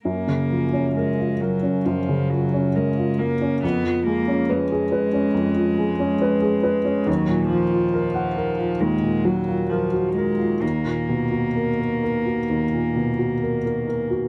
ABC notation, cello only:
X:1
M:4/4
L:1/8
Q:1/4=67
K:F#
V:1 name="Cello" clef=bass
A,2 G, F, E, F, G, A, | B, A, G,6 | F, E,3 G, F, E, G, | A,8 |]